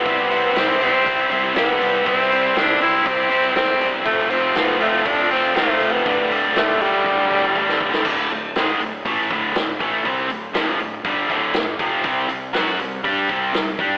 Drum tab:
CC |----------------|----------------|----------------|----------------|
HH |o-o-o-o-o-o-o-o-|o-o-o-o-o-o-o-o-|o-o-o-o-o-o-o-o-|o-o-o-o---------|
SD |----o-------o---|-o--o-------o---|-o--o-------o---|----o--------o-o|
BD |o-------o-------|o-------o-------|o-------o-------|o-------o-o-o-o-|

CC |x---------------|----------------|----------------|
HH |--o-o-o-o-o-o-o-|o-o-o-o-o-o-o-o-|o-o-o-o-o-o-o-o-|
SD |----o-------o---|----o-------o---|----o-------o---|
BD |o-------o-o---o-|o-------o-o---o-|o-------o-o---o-|